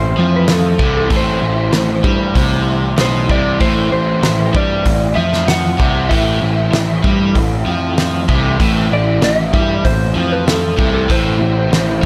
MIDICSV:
0, 0, Header, 1, 6, 480
1, 0, Start_track
1, 0, Key_signature, 0, "minor"
1, 0, Tempo, 623701
1, 855, Time_signature, 4, 2, 24, 8
1, 9278, End_track
2, 0, Start_track
2, 0, Title_t, "Clean electric guitar"
2, 0, Program_c, 0, 27
2, 0, Note_on_c, 0, 72, 88
2, 275, Note_off_c, 0, 72, 0
2, 280, Note_on_c, 0, 71, 66
2, 391, Note_off_c, 0, 71, 0
2, 397, Note_on_c, 0, 69, 62
2, 737, Note_off_c, 0, 69, 0
2, 746, Note_on_c, 0, 69, 72
2, 864, Note_off_c, 0, 69, 0
2, 896, Note_on_c, 0, 72, 84
2, 2307, Note_off_c, 0, 72, 0
2, 2316, Note_on_c, 0, 72, 61
2, 2545, Note_off_c, 0, 72, 0
2, 2548, Note_on_c, 0, 74, 84
2, 2765, Note_off_c, 0, 74, 0
2, 2778, Note_on_c, 0, 72, 82
2, 3010, Note_off_c, 0, 72, 0
2, 3020, Note_on_c, 0, 72, 69
2, 3467, Note_off_c, 0, 72, 0
2, 3511, Note_on_c, 0, 74, 85
2, 3964, Note_off_c, 0, 74, 0
2, 3967, Note_on_c, 0, 76, 81
2, 4194, Note_off_c, 0, 76, 0
2, 4216, Note_on_c, 0, 78, 84
2, 4685, Note_off_c, 0, 78, 0
2, 4688, Note_on_c, 0, 76, 82
2, 5381, Note_off_c, 0, 76, 0
2, 6874, Note_on_c, 0, 74, 82
2, 7088, Note_off_c, 0, 74, 0
2, 7111, Note_on_c, 0, 76, 93
2, 7578, Note_on_c, 0, 72, 89
2, 7597, Note_off_c, 0, 76, 0
2, 7941, Note_off_c, 0, 72, 0
2, 7944, Note_on_c, 0, 71, 78
2, 8058, Note_off_c, 0, 71, 0
2, 8061, Note_on_c, 0, 69, 70
2, 8412, Note_off_c, 0, 69, 0
2, 8422, Note_on_c, 0, 69, 74
2, 8542, Note_off_c, 0, 69, 0
2, 8551, Note_on_c, 0, 72, 78
2, 9278, Note_off_c, 0, 72, 0
2, 9278, End_track
3, 0, Start_track
3, 0, Title_t, "Overdriven electric guitar"
3, 0, Program_c, 1, 29
3, 0, Note_on_c, 1, 45, 78
3, 0, Note_on_c, 1, 52, 82
3, 0, Note_on_c, 1, 57, 85
3, 0, Note_on_c, 1, 60, 83
3, 0, Note_on_c, 1, 64, 89
3, 599, Note_off_c, 1, 64, 0
3, 602, Note_on_c, 1, 64, 72
3, 605, Note_off_c, 1, 60, 0
3, 608, Note_on_c, 1, 60, 67
3, 612, Note_off_c, 1, 57, 0
3, 615, Note_on_c, 1, 57, 68
3, 617, Note_off_c, 1, 52, 0
3, 620, Note_on_c, 1, 52, 72
3, 621, Note_off_c, 1, 45, 0
3, 624, Note_on_c, 1, 45, 64
3, 836, Note_off_c, 1, 45, 0
3, 839, Note_on_c, 1, 45, 75
3, 847, Note_off_c, 1, 52, 0
3, 850, Note_off_c, 1, 57, 0
3, 850, Note_on_c, 1, 52, 72
3, 853, Note_off_c, 1, 60, 0
3, 853, Note_on_c, 1, 57, 82
3, 856, Note_on_c, 1, 60, 89
3, 860, Note_off_c, 1, 64, 0
3, 863, Note_on_c, 1, 64, 82
3, 2527, Note_off_c, 1, 64, 0
3, 2530, Note_on_c, 1, 64, 76
3, 2536, Note_off_c, 1, 60, 0
3, 2539, Note_on_c, 1, 60, 70
3, 2542, Note_off_c, 1, 57, 0
3, 2545, Note_on_c, 1, 57, 63
3, 2548, Note_off_c, 1, 52, 0
3, 2551, Note_off_c, 1, 45, 0
3, 2551, Note_on_c, 1, 52, 67
3, 2554, Note_on_c, 1, 45, 62
3, 2770, Note_off_c, 1, 45, 0
3, 2773, Note_on_c, 1, 45, 76
3, 2777, Note_off_c, 1, 52, 0
3, 2780, Note_on_c, 1, 52, 75
3, 2782, Note_off_c, 1, 57, 0
3, 2783, Note_off_c, 1, 60, 0
3, 2785, Note_on_c, 1, 57, 90
3, 2786, Note_on_c, 1, 60, 82
3, 2791, Note_off_c, 1, 64, 0
3, 2794, Note_on_c, 1, 64, 86
3, 4452, Note_off_c, 1, 64, 0
3, 4455, Note_off_c, 1, 60, 0
3, 4455, Note_on_c, 1, 64, 82
3, 4458, Note_on_c, 1, 60, 70
3, 4463, Note_off_c, 1, 57, 0
3, 4466, Note_on_c, 1, 57, 65
3, 4468, Note_off_c, 1, 52, 0
3, 4471, Note_on_c, 1, 52, 65
3, 4472, Note_off_c, 1, 45, 0
3, 4475, Note_on_c, 1, 45, 61
3, 4686, Note_off_c, 1, 45, 0
3, 4689, Note_on_c, 1, 45, 82
3, 4694, Note_off_c, 1, 52, 0
3, 4697, Note_on_c, 1, 52, 77
3, 4699, Note_off_c, 1, 57, 0
3, 4702, Note_on_c, 1, 57, 83
3, 4704, Note_off_c, 1, 60, 0
3, 4707, Note_off_c, 1, 64, 0
3, 4707, Note_on_c, 1, 60, 80
3, 4710, Note_on_c, 1, 64, 79
3, 6367, Note_off_c, 1, 64, 0
3, 6370, Note_on_c, 1, 64, 74
3, 6372, Note_off_c, 1, 60, 0
3, 6375, Note_on_c, 1, 60, 76
3, 6379, Note_off_c, 1, 57, 0
3, 6380, Note_off_c, 1, 52, 0
3, 6382, Note_on_c, 1, 57, 63
3, 6383, Note_on_c, 1, 52, 66
3, 6387, Note_off_c, 1, 45, 0
3, 6390, Note_on_c, 1, 45, 55
3, 6604, Note_off_c, 1, 45, 0
3, 6608, Note_off_c, 1, 52, 0
3, 6608, Note_on_c, 1, 45, 86
3, 6611, Note_on_c, 1, 52, 86
3, 6615, Note_off_c, 1, 57, 0
3, 6618, Note_off_c, 1, 60, 0
3, 6618, Note_on_c, 1, 57, 86
3, 6621, Note_on_c, 1, 60, 85
3, 6622, Note_off_c, 1, 64, 0
3, 6625, Note_on_c, 1, 64, 91
3, 8277, Note_off_c, 1, 45, 0
3, 8278, Note_off_c, 1, 64, 0
3, 8279, Note_off_c, 1, 52, 0
3, 8282, Note_off_c, 1, 57, 0
3, 8283, Note_off_c, 1, 60, 0
3, 8287, Note_on_c, 1, 64, 77
3, 8295, Note_on_c, 1, 60, 73
3, 8305, Note_on_c, 1, 57, 66
3, 8309, Note_on_c, 1, 52, 62
3, 8311, Note_on_c, 1, 45, 57
3, 8516, Note_off_c, 1, 64, 0
3, 8521, Note_off_c, 1, 45, 0
3, 8521, Note_off_c, 1, 60, 0
3, 8525, Note_off_c, 1, 52, 0
3, 8525, Note_off_c, 1, 57, 0
3, 8530, Note_on_c, 1, 45, 83
3, 8535, Note_on_c, 1, 52, 89
3, 8540, Note_on_c, 1, 57, 86
3, 8546, Note_on_c, 1, 60, 86
3, 8551, Note_on_c, 1, 64, 87
3, 9278, Note_off_c, 1, 45, 0
3, 9278, Note_off_c, 1, 52, 0
3, 9278, Note_off_c, 1, 57, 0
3, 9278, Note_off_c, 1, 60, 0
3, 9278, Note_off_c, 1, 64, 0
3, 9278, End_track
4, 0, Start_track
4, 0, Title_t, "Overdriven electric guitar"
4, 0, Program_c, 2, 29
4, 0, Note_on_c, 2, 45, 60
4, 87, Note_off_c, 2, 45, 0
4, 132, Note_on_c, 2, 53, 88
4, 606, Note_off_c, 2, 53, 0
4, 612, Note_on_c, 2, 48, 93
4, 845, Note_off_c, 2, 48, 0
4, 848, Note_on_c, 2, 45, 97
4, 1082, Note_off_c, 2, 45, 0
4, 1091, Note_on_c, 2, 45, 57
4, 1285, Note_off_c, 2, 45, 0
4, 1329, Note_on_c, 2, 45, 58
4, 1524, Note_off_c, 2, 45, 0
4, 1570, Note_on_c, 2, 55, 81
4, 1805, Note_off_c, 2, 55, 0
4, 1811, Note_on_c, 2, 48, 87
4, 2284, Note_off_c, 2, 48, 0
4, 2287, Note_on_c, 2, 47, 84
4, 2524, Note_off_c, 2, 47, 0
4, 2540, Note_on_c, 2, 48, 88
4, 2770, Note_off_c, 2, 48, 0
4, 2774, Note_on_c, 2, 45, 95
4, 3004, Note_off_c, 2, 45, 0
4, 3014, Note_on_c, 2, 45, 56
4, 3206, Note_off_c, 2, 45, 0
4, 3253, Note_on_c, 2, 45, 65
4, 3446, Note_off_c, 2, 45, 0
4, 3496, Note_on_c, 2, 55, 82
4, 3728, Note_off_c, 2, 55, 0
4, 3729, Note_on_c, 2, 45, 54
4, 3924, Note_off_c, 2, 45, 0
4, 3967, Note_on_c, 2, 53, 85
4, 4443, Note_off_c, 2, 53, 0
4, 4446, Note_on_c, 2, 48, 91
4, 4684, Note_off_c, 2, 48, 0
4, 4690, Note_on_c, 2, 45, 102
4, 4926, Note_off_c, 2, 45, 0
4, 4938, Note_on_c, 2, 45, 62
4, 5129, Note_off_c, 2, 45, 0
4, 5172, Note_on_c, 2, 45, 65
4, 5365, Note_off_c, 2, 45, 0
4, 5418, Note_on_c, 2, 55, 78
4, 5649, Note_off_c, 2, 55, 0
4, 5656, Note_on_c, 2, 45, 63
4, 5848, Note_off_c, 2, 45, 0
4, 5898, Note_on_c, 2, 53, 90
4, 6369, Note_off_c, 2, 53, 0
4, 6379, Note_on_c, 2, 48, 87
4, 6610, Note_off_c, 2, 48, 0
4, 6616, Note_on_c, 2, 45, 99
4, 6848, Note_off_c, 2, 45, 0
4, 6859, Note_on_c, 2, 45, 61
4, 7049, Note_off_c, 2, 45, 0
4, 7101, Note_on_c, 2, 45, 71
4, 7290, Note_off_c, 2, 45, 0
4, 7343, Note_on_c, 2, 55, 94
4, 7572, Note_off_c, 2, 55, 0
4, 7575, Note_on_c, 2, 45, 56
4, 7767, Note_off_c, 2, 45, 0
4, 7813, Note_on_c, 2, 53, 92
4, 8284, Note_off_c, 2, 53, 0
4, 8287, Note_on_c, 2, 48, 94
4, 8524, Note_off_c, 2, 48, 0
4, 8531, Note_on_c, 2, 45, 103
4, 8751, Note_off_c, 2, 45, 0
4, 8760, Note_on_c, 2, 45, 65
4, 8959, Note_off_c, 2, 45, 0
4, 9010, Note_on_c, 2, 45, 61
4, 9204, Note_off_c, 2, 45, 0
4, 9278, End_track
5, 0, Start_track
5, 0, Title_t, "Picked electric bass"
5, 0, Program_c, 3, 34
5, 0, Note_on_c, 3, 33, 68
5, 118, Note_off_c, 3, 33, 0
5, 142, Note_on_c, 3, 41, 96
5, 588, Note_off_c, 3, 41, 0
5, 612, Note_on_c, 3, 36, 86
5, 837, Note_off_c, 3, 36, 0
5, 851, Note_on_c, 3, 33, 72
5, 1076, Note_off_c, 3, 33, 0
5, 1090, Note_on_c, 3, 33, 78
5, 1315, Note_off_c, 3, 33, 0
5, 1331, Note_on_c, 3, 33, 69
5, 1556, Note_off_c, 3, 33, 0
5, 1572, Note_on_c, 3, 43, 74
5, 1797, Note_off_c, 3, 43, 0
5, 1812, Note_on_c, 3, 36, 80
5, 2263, Note_off_c, 3, 36, 0
5, 2301, Note_on_c, 3, 35, 87
5, 2522, Note_off_c, 3, 35, 0
5, 2539, Note_on_c, 3, 36, 74
5, 2760, Note_off_c, 3, 36, 0
5, 2777, Note_on_c, 3, 33, 80
5, 3000, Note_off_c, 3, 33, 0
5, 3022, Note_on_c, 3, 33, 83
5, 3242, Note_off_c, 3, 33, 0
5, 3252, Note_on_c, 3, 33, 70
5, 3477, Note_off_c, 3, 33, 0
5, 3499, Note_on_c, 3, 43, 88
5, 3720, Note_off_c, 3, 43, 0
5, 3740, Note_on_c, 3, 33, 68
5, 3961, Note_off_c, 3, 33, 0
5, 3979, Note_on_c, 3, 41, 95
5, 4427, Note_off_c, 3, 41, 0
5, 4461, Note_on_c, 3, 36, 76
5, 4682, Note_off_c, 3, 36, 0
5, 4703, Note_on_c, 3, 33, 75
5, 4923, Note_off_c, 3, 33, 0
5, 4944, Note_on_c, 3, 33, 72
5, 5163, Note_off_c, 3, 33, 0
5, 5187, Note_on_c, 3, 33, 68
5, 5405, Note_off_c, 3, 33, 0
5, 5419, Note_on_c, 3, 43, 87
5, 5640, Note_off_c, 3, 43, 0
5, 5662, Note_on_c, 3, 33, 62
5, 5882, Note_off_c, 3, 33, 0
5, 5901, Note_on_c, 3, 41, 93
5, 6348, Note_off_c, 3, 41, 0
5, 6381, Note_on_c, 3, 36, 86
5, 6601, Note_off_c, 3, 36, 0
5, 6620, Note_on_c, 3, 33, 85
5, 6841, Note_off_c, 3, 33, 0
5, 6858, Note_on_c, 3, 33, 77
5, 7080, Note_off_c, 3, 33, 0
5, 7097, Note_on_c, 3, 33, 62
5, 7319, Note_off_c, 3, 33, 0
5, 7338, Note_on_c, 3, 43, 91
5, 7560, Note_off_c, 3, 43, 0
5, 7581, Note_on_c, 3, 33, 63
5, 7801, Note_off_c, 3, 33, 0
5, 7821, Note_on_c, 3, 41, 97
5, 8267, Note_off_c, 3, 41, 0
5, 8302, Note_on_c, 3, 36, 85
5, 8522, Note_off_c, 3, 36, 0
5, 8544, Note_on_c, 3, 33, 78
5, 8763, Note_off_c, 3, 33, 0
5, 8781, Note_on_c, 3, 33, 84
5, 9001, Note_off_c, 3, 33, 0
5, 9019, Note_on_c, 3, 33, 64
5, 9240, Note_off_c, 3, 33, 0
5, 9278, End_track
6, 0, Start_track
6, 0, Title_t, "Drums"
6, 368, Note_on_c, 9, 46, 49
6, 369, Note_on_c, 9, 38, 104
6, 445, Note_off_c, 9, 46, 0
6, 446, Note_off_c, 9, 38, 0
6, 611, Note_on_c, 9, 36, 88
6, 688, Note_off_c, 9, 36, 0
6, 849, Note_on_c, 9, 46, 45
6, 851, Note_on_c, 9, 36, 92
6, 926, Note_off_c, 9, 46, 0
6, 928, Note_off_c, 9, 36, 0
6, 1328, Note_on_c, 9, 46, 41
6, 1330, Note_on_c, 9, 38, 93
6, 1405, Note_off_c, 9, 46, 0
6, 1407, Note_off_c, 9, 38, 0
6, 1570, Note_on_c, 9, 36, 100
6, 1647, Note_off_c, 9, 36, 0
6, 1812, Note_on_c, 9, 36, 92
6, 1813, Note_on_c, 9, 46, 45
6, 1889, Note_off_c, 9, 36, 0
6, 1890, Note_off_c, 9, 46, 0
6, 2291, Note_on_c, 9, 46, 44
6, 2292, Note_on_c, 9, 38, 99
6, 2368, Note_off_c, 9, 46, 0
6, 2369, Note_off_c, 9, 38, 0
6, 2536, Note_on_c, 9, 36, 83
6, 2612, Note_off_c, 9, 36, 0
6, 2774, Note_on_c, 9, 46, 37
6, 2775, Note_on_c, 9, 36, 93
6, 2851, Note_off_c, 9, 46, 0
6, 2852, Note_off_c, 9, 36, 0
6, 3257, Note_on_c, 9, 46, 44
6, 3259, Note_on_c, 9, 38, 92
6, 3334, Note_off_c, 9, 46, 0
6, 3336, Note_off_c, 9, 38, 0
6, 3499, Note_on_c, 9, 36, 100
6, 3576, Note_off_c, 9, 36, 0
6, 3737, Note_on_c, 9, 46, 52
6, 3739, Note_on_c, 9, 36, 87
6, 3814, Note_off_c, 9, 46, 0
6, 3816, Note_off_c, 9, 36, 0
6, 4099, Note_on_c, 9, 38, 31
6, 4176, Note_off_c, 9, 38, 0
6, 4218, Note_on_c, 9, 46, 47
6, 4220, Note_on_c, 9, 38, 88
6, 4295, Note_off_c, 9, 46, 0
6, 4297, Note_off_c, 9, 38, 0
6, 4461, Note_on_c, 9, 36, 97
6, 4538, Note_off_c, 9, 36, 0
6, 4701, Note_on_c, 9, 36, 85
6, 4706, Note_on_c, 9, 46, 46
6, 4778, Note_off_c, 9, 36, 0
6, 4783, Note_off_c, 9, 46, 0
6, 5181, Note_on_c, 9, 46, 43
6, 5183, Note_on_c, 9, 38, 96
6, 5258, Note_off_c, 9, 46, 0
6, 5260, Note_off_c, 9, 38, 0
6, 5419, Note_on_c, 9, 36, 107
6, 5496, Note_off_c, 9, 36, 0
6, 5660, Note_on_c, 9, 36, 85
6, 5662, Note_on_c, 9, 46, 47
6, 5737, Note_off_c, 9, 36, 0
6, 5739, Note_off_c, 9, 46, 0
6, 6140, Note_on_c, 9, 46, 46
6, 6141, Note_on_c, 9, 38, 102
6, 6217, Note_off_c, 9, 46, 0
6, 6218, Note_off_c, 9, 38, 0
6, 6378, Note_on_c, 9, 36, 91
6, 6455, Note_off_c, 9, 36, 0
6, 6618, Note_on_c, 9, 36, 92
6, 6621, Note_on_c, 9, 46, 45
6, 6695, Note_off_c, 9, 36, 0
6, 6698, Note_off_c, 9, 46, 0
6, 7097, Note_on_c, 9, 46, 44
6, 7098, Note_on_c, 9, 38, 96
6, 7174, Note_off_c, 9, 46, 0
6, 7175, Note_off_c, 9, 38, 0
6, 7339, Note_on_c, 9, 36, 97
6, 7416, Note_off_c, 9, 36, 0
6, 7580, Note_on_c, 9, 36, 84
6, 7584, Note_on_c, 9, 46, 47
6, 7657, Note_off_c, 9, 36, 0
6, 7661, Note_off_c, 9, 46, 0
6, 8063, Note_on_c, 9, 46, 43
6, 8064, Note_on_c, 9, 38, 107
6, 8140, Note_off_c, 9, 46, 0
6, 8141, Note_off_c, 9, 38, 0
6, 8301, Note_on_c, 9, 36, 99
6, 8378, Note_off_c, 9, 36, 0
6, 8541, Note_on_c, 9, 36, 95
6, 8545, Note_on_c, 9, 46, 49
6, 8618, Note_off_c, 9, 36, 0
6, 8622, Note_off_c, 9, 46, 0
6, 9026, Note_on_c, 9, 46, 43
6, 9027, Note_on_c, 9, 38, 90
6, 9103, Note_off_c, 9, 46, 0
6, 9104, Note_off_c, 9, 38, 0
6, 9278, End_track
0, 0, End_of_file